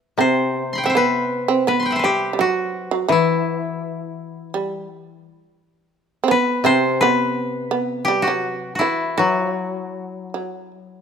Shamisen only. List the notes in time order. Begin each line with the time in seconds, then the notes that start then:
0.19 C4
0.56 B3
0.86 C4
0.95 B3
1.48 C4
1.67 B3
2.04 G3
2.33 G3
2.39 F#3
2.91 F#3
3.08 E3
4.54 G3
6.24 C4
6.28 B3
6.65 C4
7.03 B3
7.71 B3
8.08 G3
8.28 F#3
8.81 E3
9.18 E3
9.38 F3
9.51 F#3
10.34 F#3